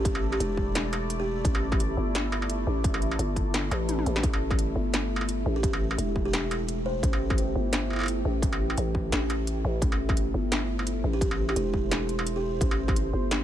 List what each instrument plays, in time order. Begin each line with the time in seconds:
Already playing: 808-style bass A1, ambient pad A3 E4 D5, kalimba G4
0.05 kick, closed hi-hat
0.15 struck metal
0.32 kalimba G4, struck metal
0.40 808-style bass E1, kalimba G4, closed hi-hat
0.57 kick
0.75 snare, closed hi-hat
0.93 closed hi-hat, struck metal
1.10 closed hi-hat
1.20 kalimba G4
1.45 808-style bass A1, kick, closed hi-hat
1.55 struck metal
1.72 kick, struck metal
1.80 closed hi-hat
1.97 808-style bass G1
2.15 snare, closed hi-hat
2.32 struck metal
2.42 struck metal
2.50 closed hi-hat
2.67 808-style bass A1
2.84 kick, closed hi-hat
2.94 struck metal
3.02 closed hi-hat
3.11 struck metal
3.19 808-style bass G1, closed hi-hat
3.36 kick, closed hi-hat
3.54 snare, closed hi-hat
3.71 808-style bass A1, closed hi-hat, struck metal
3.89 closed hi-hat, mid tom
3.99 mid tom
4.06 808-style bass A1, closed hi-hat
4.16 snare
4.23 808-style bass A1, ambient pad G4, kick, closed hi-hat
4.33 struck metal
4.51 kick, struck metal
4.59 closed hi-hat
4.76 808-style bass G1
4.94 snare, closed hi-hat
5.16 struck metal
5.21 struck metal
5.29 closed hi-hat
5.46 808-style bass A1
5.56 kalimba G4
5.63 kick, closed hi-hat
5.73 struck metal
5.91 struck metal
5.98 808-style bass E1, closed hi-hat
6.16 kick
6.25 kalimba G4
6.33 snare, closed hi-hat
6.51 closed hi-hat, struck metal
6.69 closed hi-hat
6.86 kalimba C5
7.03 808-style bass A1, kick, closed hi-hat
7.13 struck metal
7.30 kick, struck metal
7.38 closed hi-hat
7.56 808-style bass G1
7.73 snare, closed hi-hat
7.90 struck metal
7.93 struck metal
7.96 struck metal
7.99 struck metal
8.01 struck metal
8.03 struck metal
8.06 closed hi-hat, struck metal
8.25 808-style bass A1
8.42 kick, closed hi-hat
8.53 struck metal
8.70 struck metal
8.78 808-style bass A1, closed hi-hat
8.95 kick
9.12 808-style bass A1, snare, closed hi-hat
9.30 closed hi-hat, struck metal
9.47 closed hi-hat
9.65 808-style bass A1
9.82 808-style bass A1, ambient pad C5, kick, closed hi-hat
9.92 struck metal
10.09 kick, struck metal
10.17 closed hi-hat
10.34 808-style bass G1
10.52 snare, closed hi-hat
10.79 struck metal
10.87 closed hi-hat
11.04 808-style bass A1
11.13 kalimba G4
11.21 kick, closed hi-hat
11.31 struck metal
11.49 kalimba G4, struck metal
11.56 808-style bass E1, kalimba G4, closed hi-hat
11.74 kick
11.91 snare, closed hi-hat
12.09 closed hi-hat
12.19 struck metal
12.27 closed hi-hat
12.36 kalimba G4
12.61 808-style bass A1, kick, closed hi-hat
12.71 struck metal
12.88 kick, struck metal
12.96 closed hi-hat
13.13 808-style bass G1
13.31 snare, closed hi-hat